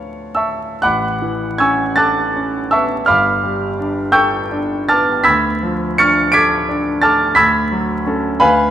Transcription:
0.00 0.78 D2 soft
0.00 0.78 F3 soft
0.00 0.79 A3 soft
0.00 0.79 D4 soft
0.00 0.80 F4 soft
0.00 0.35 C#5 medium
0.00 0.35 F5 medium
0.00 0.34 A5 medium
0.00 0.35 C#6 medium
0.35 0.80 E5 medium
0.35 0.79 A5 medium
0.35 0.80 C#6 medium
0.35 0.82 E6 medium
0.82 3.04 A1 medium
0.82 1.56 F#5 medium
0.82 1.56 B5 medium
0.82 1.56 D6 medium
0.82 1.59 F#6 loud
1.22 1.83 E3 soft
1.58 2.21 C#4 medium
1.58 1.95 G#5 medium
1.58 1.95 C#6 medium
1.58 1.95 E6 medium
1.58 1.97 G#6 loud
1.96 2.58 A4 medium
1.96 2.68 A5 medium
1.96 2.68 D6 medium
1.96 2.68 F#6 medium
1.96 2.71 A6 loud
2.36 2.94 C#4 soft
2.71 3.09 B3 soft
2.71 3.05 E5 medium
2.71 3.05 A5 medium
2.71 3.06 C#6 medium
2.71 3.07 E6 medium
3.06 5.23 G1 medium
3.06 4.11 F5 medium
3.06 4.11 B5 medium
3.06 4.11 D6 medium
3.06 4.14 F6 loud
3.44 4.01 G3 soft
3.79 4.38 D4 medium
4.12 4.74 A4 medium
4.12 4.84 G5 medium
4.12 4.85 C#6 medium
4.12 4.84 E6 medium
4.12 4.88 G6 loud
4.52 5.11 D4 medium
4.89 5.27 B3 medium
4.89 5.23 A5 medium
4.89 5.23 D6 medium
4.89 5.23 F6 medium
4.89 5.26 A6 loud
5.24 7.34 D2 medium
5.24 5.95 B5 medium
5.24 5.94 E6 medium
5.24 5.94 G#6 medium
5.24 5.98 B6 loud
5.63 6.20 F3 soft
5.98 6.55 D4 medium
5.98 6.32 C#6 medium
5.98 6.32 F6 medium
5.98 6.32 A6 medium
5.98 6.34 C#7 loud
6.32 6.90 A4 medium
6.32 6.99 D6 loud
6.32 6.99 G#6 loud
6.32 6.99 B6 loud
6.32 7.02 D7 loud
6.69 7.24 D4 medium
7.02 7.39 A3 medium
7.02 7.36 A5 medium
7.02 7.36 D6 medium
7.02 7.36 F6 medium
7.02 7.38 A6 loud
7.35 8.38 D2 medium
7.35 8.36 B5 medium
7.35 8.37 E6 medium
7.35 8.37 G#6 loud
7.35 8.40 B6 loud
7.71 8.27 F#3 medium
8.07 8.38 C#4 medium
8.07 8.38 A4 medium
8.40 8.71 D2 medium
8.40 8.71 B4 medium
8.40 8.71 F5 medium
8.40 8.71 G#5 medium
8.40 8.71 B5 loud

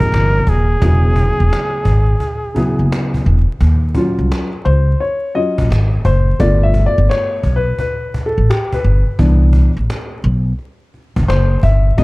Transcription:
0.00 0.09 G#1 medium
0.00 0.54 C3 medium
0.00 0.55 F3 medium
0.00 0.55 A#3 medium
0.00 0.56 D#4 medium
0.00 0.56 G#4 medium
0.00 0.51 A#4 loud
0.00 cajon bass loud
0.12 0.39 G1 medium
0.12 cajon slap loud
0.47 0.74 D#1 medium
0.47 2.92 G#4 medium
0.47 cajon bass medium
0.80 1.26 E1 loud
0.80 1.83 C#3 medium
0.80 1.84 F#3 medium
0.80 1.84 B3 medium
0.80 1.84 E4 medium
0.80 1.85 G#4 medium
0.80 cajon bass loud
1.16 cajon bass medium
1.40 1.49 E1 medium
1.53 cajon slap loud
1.85 2.13 G#1 medium
1.85 cajon bass medium
2.20 cajon bass medium
2.20 cajon slap soft
2.43 cajon slap soft
2.55 3.33 C#3 medium
2.55 3.34 F#3 medium
2.55 3.34 B3 medium
2.55 3.34 E4 medium
2.55 3.35 G#4 medium
2.55 cajon bass medium
2.79 2.88 F#1 medium
2.92 cajon slap loud
3.14 cajon bass medium
3.25 3.44 E1 medium
3.25 cajon slap soft
3.49 cajon slap soft
3.61 4.05 D#2 loud
3.61 cajon bass medium
3.95 4.46 F#3 medium
3.95 4.46 C#4 soft
3.95 4.46 F4 medium
3.95 cajon bass medium
4.19 4.28 C2 medium
4.32 cajon slap loud
4.65 4.92 C#2 loud
4.65 5.01 C5 medium
4.65 cajon slap soft
5.00 5.36 C#5 medium
5.00 cajon slap soft
5.34 5.66 F#3 soft
5.34 5.67 C#4 soft
5.34 5.67 F4 soft
5.34 6.07 D#5 medium
5.34 cajon slap soft
5.58 5.68 A#1 medium
5.58 cajon bass loud
5.70 5.97 G#1 medium
5.70 cajon slap loud
6.05 6.32 F#1 medium
6.05 6.41 C5 medium
6.05 cajon bass medium
6.39 6.84 G1 loud
6.39 7.40 A3 medium
6.39 7.41 B3 soft
6.39 7.41 F4 medium
6.39 6.64 D5 loud
6.39 cajon bass loud
6.63 6.85 E5 medium
6.74 cajon bass medium
6.86 7.08 D5 loud
6.98 7.07 G1 medium
7.09 7.57 C#5 medium
7.09 cajon slap loud
7.43 7.71 B1 medium
7.43 cajon bass medium
7.56 7.78 B4 medium
7.78 8.27 B4 medium
7.78 cajon bass medium
7.78 cajon slap soft
8.14 cajon bass medium
8.26 8.48 A4 medium
8.38 8.47 A1 medium
8.50 8.74 G4 medium
8.50 cajon slap loud
8.72 9.39 B4 medium
8.72 cajon bass medium
8.84 9.02 G1 medium
8.84 cajon slap soft
9.19 9.64 C2 loud
9.19 9.69 E3 medium
9.19 9.70 B3 soft
9.19 9.70 D4 medium
9.19 cajon bass loud
9.53 cajon bass medium
9.77 9.86 A1 medium
9.90 cajon slap loud
10.23 10.51 B1 loud
10.23 cajon slap soft
10.59 cajon slap soft
10.94 cajon slap soft
11.16 11.26 G1 medium
11.16 cajon bass loud
11.28 11.55 F#1 medium
11.28 11.61 C5 medium
11.28 cajon slap loud
11.63 11.90 G1 medium
11.63 11.96 E5 medium
11.63 cajon bass medium
11.97 12.04 G#1 loud
11.97 12.04 F#3 medium
11.97 12.04 A#3 medium
11.97 12.04 B3 medium
11.97 12.04 D#5 medium
11.97 cajon bass loud

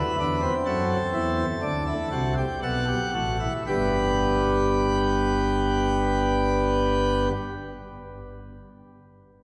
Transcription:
0.00 0.16 E4 medium
0.00 0.53 B4 medium
0.20 0.49 E2 medium
0.20 0.48 E3 medium
0.20 0.40 D4 medium
0.42 1.45 C4 medium
0.66 0.95 F#2 medium
0.66 0.95 F#3 medium
0.66 2.35 A4 medium
1.13 1.44 E2 medium
1.13 1.43 E3 medium
1.62 1.93 D2 medium
1.62 1.93 D3 medium
1.62 1.84 D4 medium
1.87 2.08 E4 medium
2.12 2.43 C2 medium
2.12 2.43 C3 medium
2.12 2.33 F#4 medium
2.38 2.59 G4 medium
2.62 2.95 B1 medium
2.62 2.95 B2 medium
2.62 2.85 A4 medium
2.62 3.52 F#5 medium
2.88 3.10 G4 medium
3.14 3.47 A1 medium
3.14 3.47 A2 medium
3.14 3.37 F#4 medium
3.40 3.63 E4 medium
3.67 7.28 G1 medium
3.67 7.28 G2 medium
3.67 7.31 G3 medium
3.67 7.31 B3 medium
3.67 7.28 G4 medium
3.67 7.28 B4 medium

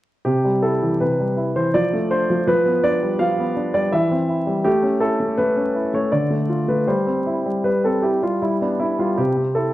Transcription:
0.25 0.99 C3 soft
0.25 0.63 G4 medium
0.45 0.75 G3 soft
0.62 0.93 E4 soft
0.62 1.00 A4 soft
0.82 1.12 E3 soft
1.00 1.72 C3 soft
1.00 1.55 B4 medium
1.20 1.48 G3 soft
1.37 1.66 E4 soft
1.56 1.74 E3 soft
1.56 1.74 C5 medium
1.74 2.28 F3 soft
1.74 2.11 D5 medium
1.93 2.22 A3 soft
2.11 2.40 D4 soft
2.11 2.47 C5 medium
2.30 2.46 F3 soft
2.47 3.18 F3 soft
2.47 2.84 B4 medium
2.66 2.95 B3 soft
2.84 3.13 D4 soft
2.84 3.20 D5 medium
3.03 3.31 G3 soft
3.19 3.91 F3 soft
3.19 3.74 F5 medium
3.38 3.67 B3 soft
3.56 3.85 D4 soft
3.74 3.93 G3 soft
3.74 3.93 D5 medium
3.92 4.63 E3 soft
3.92 4.65 E5 medium
4.11 4.40 C4 soft
4.29 4.58 E4 soft
4.47 4.65 G3 soft
4.65 5.18 A3 medium
4.65 5.01 G4 medium
4.83 5.12 C#4 soft
5.00 5.30 E4 soft
5.00 5.37 A4 medium
5.20 5.37 A3 soft
5.38 5.92 A3 soft
5.38 5.93 B4 medium
5.57 5.86 C#4 soft
5.75 6.05 E4 soft
5.94 6.12 A3 soft
5.94 6.13 C#5 medium
6.12 6.86 D3 soft
6.12 6.69 D5 medium
6.30 6.61 A3 soft
6.49 6.80 F4 soft
6.68 6.88 A3 soft
6.68 6.88 B4 medium
6.87 7.44 G3 soft
6.87 7.65 C5 soft
7.07 7.38 C4 soft
7.26 7.57 E4 soft
7.46 7.63 G3 soft
7.64 8.21 G3 soft
7.64 7.84 B4 soft
7.84 8.15 C4 soft
7.84 8.04 A4 soft
8.03 8.34 E4 soft
8.03 8.22 G4 soft
8.23 8.40 G3 soft
8.23 8.42 F4 soft
8.42 8.97 G3 soft
8.42 8.61 E4 soft
8.61 8.91 B3 soft
8.61 8.79 D4 soft
8.79 9.10 D4 soft
8.79 8.99 E4 medium
8.99 9.18 G3 soft
8.99 9.18 F4 soft
9.17 9.74 C3 soft
9.17 9.55 G4 medium
9.36 9.66 C4 soft
9.55 9.74 E4 soft
9.55 9.74 A4 medium

